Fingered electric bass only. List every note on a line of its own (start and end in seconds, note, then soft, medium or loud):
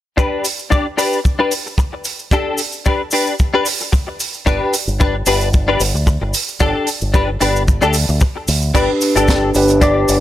4.47 4.59 G1 medium
4.87 5.23 G1 medium
5.26 5.77 G1 medium
5.80 5.92 G1 medium
5.94 6.16 D2 medium
6.21 6.32 G1 medium
6.61 6.73 G1 medium
7.02 7.38 G1 medium
7.41 7.78 G1 medium
7.82 8.04 D2 medium
8.09 8.19 D2 medium
8.48 8.71 D2 medium
8.75 8.87 G1 medium
9.16 9.52 G1 medium
9.55 10.05 G1 medium
10.09 10.20 G1 medium